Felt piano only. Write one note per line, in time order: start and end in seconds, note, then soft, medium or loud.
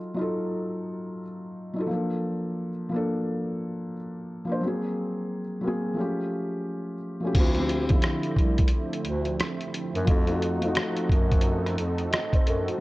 0.00 0.14 F#3 medium
0.00 0.16 D#4 medium
0.00 0.18 F4 medium
0.00 0.21 A4 medium
0.00 1.91 F5 medium
0.14 1.20 F#3 medium
0.14 1.21 D#4 medium
0.18 1.22 F4 medium
0.18 1.24 A4 medium
1.73 1.85 F#3 medium
1.73 1.86 D#4 medium
1.78 1.87 F4 medium
1.78 1.88 A4 medium
1.87 2.68 F3 medium
1.87 2.69 A#3 medium
1.91 2.70 D4 medium
1.91 2.71 A4 medium
2.89 3.94 F3 medium
2.89 3.95 A#3 medium
2.94 3.96 D4 medium
2.94 3.97 A4 medium
4.45 4.57 F3 medium
4.45 4.58 A#3 medium
4.49 4.59 D4 medium
4.49 4.60 C5 medium
4.61 5.41 F#3 medium
4.61 5.42 A#3 medium
4.65 5.43 C4 medium
4.65 5.44 G#4 medium
5.61 5.97 F#3 medium
5.61 5.98 A#3 medium
5.66 5.99 C4 medium
5.66 6.00 G#4 loud
5.94 6.93 F3 medium
5.94 6.94 A3 medium
5.98 6.95 C#4 medium
5.98 6.97 G4 medium
7.20 7.31 F3 medium
7.20 7.32 A3 medium
7.25 7.33 C#4 medium
7.25 7.34 G4 medium
7.32 7.50 D3 medium
7.32 7.51 F3 medium
7.37 7.52 C4 medium
7.37 7.53 E4 medium
7.54 7.79 D3 medium
7.54 7.80 F3 medium
7.59 7.81 C4 medium
7.59 7.82 G4 medium
7.89 8.92 D3 medium
7.89 8.94 F3 medium
7.93 8.95 C4 medium
7.93 8.96 E4 medium
10.04 10.22 F3 medium
10.04 10.23 A3 medium
10.09 10.24 D#4 medium
10.09 10.25 F#4 medium
10.25 10.51 F3 medium
10.25 10.52 A3 medium
10.29 10.53 D#4 medium
10.29 10.54 F#4 medium
10.61 11.65 F3 medium
10.61 11.66 A3 medium
10.66 11.67 D#4 medium
10.66 11.68 F#4 loud
12.11 12.31 D#5 medium
12.34 12.46 C5 medium
12.47 12.67 A4 medium
12.69 12.80 F#4 medium